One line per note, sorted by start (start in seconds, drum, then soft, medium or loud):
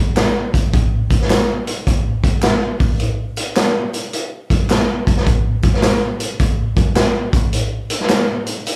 0.17 snare loud
0.17 clap medium
0.17 closed hi-hat medium
0.17 tambourine medium
0.54 kick medium
0.54 closed hi-hat medium
0.54 tambourine medium
0.74 kick loud
0.74 closed hi-hat medium
0.74 tambourine soft
1.10 kick medium
1.10 closed hi-hat medium
1.10 tambourine medium
1.21 snare soft
1.30 snare loud
1.30 clap medium
1.30 closed hi-hat medium
1.30 tambourine medium
1.67 closed hi-hat medium
1.67 tambourine soft
1.87 kick medium
1.87 closed hi-hat medium
1.87 tambourine soft
2.24 kick medium
2.24 closed hi-hat medium
2.42 snare loud
2.42 clap medium
2.42 closed hi-hat medium
2.42 tambourine loud
2.80 kick loud
2.80 open hi-hat medium
2.80 tambourine medium
3.00 closed hi-hat medium
3.36 closed hi-hat medium
3.36 tambourine medium
3.56 snare loud
3.56 clap loud
3.56 closed hi-hat medium
3.56 tambourine medium
3.93 closed hi-hat medium
3.93 tambourine soft
4.13 closed hi-hat medium
4.13 tambourine soft
4.50 kick medium
4.50 closed hi-hat medium
4.70 snare loud
4.70 clap medium
4.70 closed hi-hat medium
4.70 tambourine medium
5.07 kick medium
5.07 closed hi-hat medium
5.07 tambourine medium
5.17 snare soft
5.27 kick loud
5.27 closed hi-hat medium
5.63 kick medium
5.63 closed hi-hat medium
5.63 tambourine medium
5.74 snare soft
5.82 snare loud
5.82 clap medium
5.82 closed hi-hat medium
5.82 tambourine medium
6.20 closed hi-hat medium
6.20 tambourine soft
6.39 kick medium
6.39 closed hi-hat medium
6.39 tambourine medium
6.76 kick medium
6.76 closed hi-hat medium
6.76 tambourine soft
6.96 snare loud
6.96 clap medium
6.96 closed hi-hat medium
6.96 tambourine medium
7.33 kick loud
7.33 closed hi-hat medium
7.33 tambourine medium
7.53 closed hi-hat medium
7.53 tambourine soft
7.90 closed hi-hat medium
7.90 tambourine medium
8.01 snare soft
8.09 snare loud
8.09 clap loud
8.09 closed hi-hat medium
8.09 tambourine loud
8.46 closed hi-hat medium
8.46 tambourine soft
8.66 closed hi-hat medium
8.66 tambourine medium